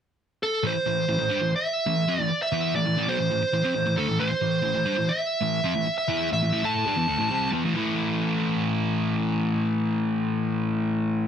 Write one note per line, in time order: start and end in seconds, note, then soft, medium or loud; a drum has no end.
0.43 0.65 A4 medium
0.63 0.73 A2 medium
0.63 0.74 E3 medium
0.63 1.55 C5 medium
0.75 muted distorted electric guitar stroke medium
0.86 1.03 A2 medium
0.86 1.04 E3 medium
1.08 1.17 A2 medium
1.08 1.18 E3 medium
1.19 1.30 A2 medium
1.19 1.29 E3 medium
1.29 1.40 G3 medium
1.29 1.41 D4 loud
1.41 1.52 A2 medium
1.41 1.52 E3 medium
1.53 2.20 E5 medium
1.53 muted distorted electric guitar stroke medium
1.86 2.04 A2 medium
1.86 2.04 E3 medium
2.07 2.18 F3 medium
2.07 2.18 C4 loud
2.18 2.29 A2 medium
2.18 2.30 E3 medium
2.18 2.41 D5 medium
2.30 muted distorted electric guitar stroke medium
2.42 2.75 E5 medium
2.52 2.74 E3 loud
2.52 2.74 B3 medium
2.52 2.74 E4 loud
2.74 2.84 A2 medium
2.74 2.85 E3 medium
2.74 3.09 D5 medium
2.85 2.96 A2 medium
2.85 2.96 E3 medium
2.97 3.07 A2 medium
2.97 3.07 E3 loud
3.07 3.18 B2 loud
3.07 3.18 F#3 loud
3.07 3.97 C5 medium
3.18 3.29 A2 medium
3.18 3.29 E3 medium
3.31 3.41 A2 medium
3.31 3.41 E3 medium
3.42 muted distorted electric guitar stroke medium
3.53 3.63 A2 medium
3.53 3.64 E3 medium
3.63 3.74 F3 medium
3.63 3.74 C4 loud
3.75 3.85 A2 medium
3.75 3.86 E3 medium
3.86 3.97 A2 medium
3.86 3.97 E3 medium
3.97 4.07 D3 loud
3.97 4.08 A3 loud
3.97 4.20 A4 medium
4.08 4.18 A2 medium
4.08 4.18 E3 medium
4.19 4.30 A2 medium
4.19 4.30 E3 medium
4.19 5.11 C5 loud
4.31 muted distorted electric guitar stroke medium
4.41 4.59 A2 medium
4.41 4.59 E3 medium
4.62 4.73 A2 medium
4.62 4.74 E3 medium
4.74 4.86 A2 medium
4.74 4.85 E3 medium
4.86 4.96 G3 loud
4.86 4.96 D4 loud
4.97 5.07 A2 medium
4.97 5.08 E3 medium
5.08 5.97 E5 medium
5.08 muted distorted electric guitar stroke medium
5.41 5.59 A2 medium
5.41 5.59 E3 medium
5.64 5.74 F3 medium
5.64 5.74 C4 loud
5.75 5.85 A2 medium
5.75 5.86 E3 medium
5.86 muted distorted electric guitar stroke medium
5.98 6.28 E5 loud
6.08 6.29 E3 medium
6.08 6.30 B3 loud
6.08 6.30 E4 loud
6.31 6.41 A2 medium
6.31 6.41 E3 medium
6.31 6.66 E5 medium
6.42 6.51 A2 medium
6.42 6.52 E3 medium
6.52 6.63 A2 medium
6.52 6.62 E3 medium
6.63 6.85 A3 medium
6.63 6.85 E4 medium
6.63 6.85 A4 medium
6.63 7.49 A5 medium
6.86 6.96 G3 medium
6.86 6.97 D4 loud
6.96 7.07 E3 medium
6.96 7.07 B3 medium
7.07 7.18 D3 medium
7.07 7.18 A3 loud
7.19 7.29 A2 medium
7.19 7.30 E3 loud
7.30 7.52 C3 loud
7.30 7.52 G3 loud
7.30 7.52 C4 loud
7.53 7.63 E3 medium
7.53 7.64 B3 loud
7.65 7.73 A2 medium
7.65 7.75 E3 medium
7.75 11.28 A2 medium
7.75 11.28 E3 medium
7.75 11.28 A3 loud